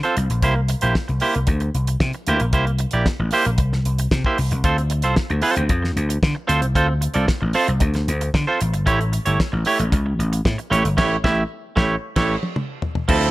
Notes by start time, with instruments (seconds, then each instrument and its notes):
0.03 clean electric guitar C4 F4 A4 C5, closed hi-hat
0.17 slap bass C2, muted clean electric guitar stroke, closed hi-hat
0.30 slap bass A#1, muted clean electric guitar stroke, closed hi-hat
0.42 slap bass C2, clean electric guitar A#3 E4 G4 C5, kick, closed hi-hat
0.55 muted clean electric guitar stroke
0.68 muted clean electric guitar stroke, closed hi-hat
0.81 slap bass A#1, clean electric guitar A#3 E4 G4 C5, closed hi-hat
0.95 kick, snare
1.08 slap bass C2, muted clean electric guitar stroke, closed hi-hat
1.20 clean electric guitar A#3 E4 G4 C5, open hi-hat
1.35 slap bass C2, muted clean electric guitar stroke, closed hi-hat
1.47 slap bass D2, muted clean electric guitar stroke, kick, closed hi-hat
1.60 muted clean electric guitar stroke, closed hi-hat
1.74 slap bass C2, closed hi-hat
1.87 muted clean electric guitar stroke, closed hi-hat
2.00 slap bass C3, kick, snare
2.13 muted clean electric guitar stroke, closed hi-hat
2.27 slap bass D2, clean electric guitar A#3 E4 G4 C5, closed hi-hat
2.40 slap bass A#1, muted clean electric guitar stroke, closed hi-hat
2.53 slap bass C2, clean electric guitar A#3 E4 G4 C5, kick, closed hi-hat
2.66 muted clean electric guitar stroke, closed hi-hat
2.79 muted clean electric guitar stroke, closed hi-hat
2.91 slap bass A#1, clean electric guitar A#3 E4 G4 D5, closed hi-hat
3.06 kick, snare
3.19 slap bass A1, muted clean electric guitar stroke
3.31 clean electric guitar A#3 E4 G4 C5, open hi-hat
3.45 slap bass A#1, muted clean electric guitar stroke, closed hi-hat
3.58 slap bass C2, muted clean electric guitar stroke, kick, closed hi-hat
3.73 muted clean electric guitar stroke, snare
3.85 slap bass C2, closed hi-hat
3.98 muted clean electric guitar stroke, closed hi-hat
4.11 slap bass C3, muted clean electric guitar stroke, kick, snare
4.24 clean electric guitar A#3 E4 G4 C5, kick
4.38 slap bass C2, muted clean electric guitar stroke, open hi-hat
4.51 slap bass C2, muted clean electric guitar stroke, closed hi-hat
4.64 slap bass D2, clean electric guitar C4 F4 A4 C5, kick, closed hi-hat
4.78 muted clean electric guitar stroke, closed hi-hat
4.90 muted clean electric guitar stroke, closed hi-hat
5.02 slap bass C2, clean electric guitar C4 F4 A4 C5, closed hi-hat
5.16 kick, snare
5.30 slap bass D2, muted clean electric guitar stroke, closed hi-hat
5.42 clean electric guitar C4 F4 A4 C5, open hi-hat
5.56 slap bass D2, muted clean electric guitar stroke, closed hi-hat
5.69 slap bass F2, muted clean electric guitar stroke, kick, closed hi-hat
5.82 muted clean electric guitar stroke, snare
5.96 slap bass D2, closed hi-hat
6.09 muted clean electric guitar stroke, closed hi-hat
6.23 slap bass D3, kick, snare
6.35 muted clean electric guitar stroke
6.47 slap bass D2, clean electric guitar C4 F4 A4 C5, closed hi-hat
6.62 slap bass C2, muted clean electric guitar stroke, closed hi-hat
6.75 slap bass D2, clean electric guitar C4 F4 A4 C5, kick, closed hi-hat
6.88 muted clean electric guitar stroke
7.01 muted clean electric guitar stroke, closed hi-hat
7.14 slap bass C2, clean electric guitar C4 F4 A4 D5, closed hi-hat
7.27 muted clean electric guitar stroke, kick, snare
7.41 slap bass A1, muted clean electric guitar stroke
7.53 clean electric guitar C4 F4 A4 C5, open hi-hat
7.68 slap bass C2, muted clean electric guitar stroke, closed hi-hat
7.80 slap bass D2, muted clean electric guitar stroke, kick, closed hi-hat
7.94 muted clean electric guitar stroke, snare, closed hi-hat
8.08 slap bass D2, closed hi-hat
8.21 muted clean electric guitar stroke, closed hi-hat
8.34 slap bass D3, muted clean electric guitar stroke, kick, snare
8.47 clean electric guitar C4 F4 A4 C5
8.61 slap bass A1, muted clean electric guitar stroke, closed hi-hat
8.74 slap bass G1, muted clean electric guitar stroke, closed hi-hat
8.86 slap bass A1, clean electric guitar A3 E4 G4 C#5, kick, closed hi-hat
9.00 muted clean electric guitar stroke, closed hi-hat
9.13 muted clean electric guitar stroke, closed hi-hat
9.25 slap bass G1, clean electric guitar A3 E4 G4 C#5, closed hi-hat
9.40 muted clean electric guitar stroke, kick, snare
9.52 slap bass A1, muted clean electric guitar stroke
9.65 clean electric guitar A3 E4 G4 C#5, open hi-hat
9.79 slap bass A1, muted clean electric guitar stroke, closed hi-hat
9.92 slap bass C#2, muted clean electric guitar stroke, kick, closed hi-hat
10.06 muted clean electric guitar stroke
10.19 slap bass A1, closed hi-hat
10.33 muted clean electric guitar stroke, closed hi-hat
10.45 slap bass A2, kick, snare
10.58 muted clean electric guitar stroke, closed hi-hat
10.70 slap bass A1, clean electric guitar A3 E4 G4 C#5, closed hi-hat
10.85 slap bass G1, muted clean electric guitar stroke, closed hi-hat
10.97 slap bass A1, clean electric guitar A3 E4 G4 C#5, kick, snare, crash
11.24 slap bass A1, clean electric guitar A3 E4 G4 E5, kick, snare
11.76 slap bass A1, clean electric guitar A3 E4 G4 C#5, kick, snare
12.16 slap bass A1, clean electric guitar A3 E4 G4 C#5, kick, snare, crash
12.43 high tom
12.56 mid tom
12.82 floor tom
12.95 floor tom
13.08 slap bass D2, clean electric guitar F3 C4 E4 A4, kick, crash
13.22 closed hi-hat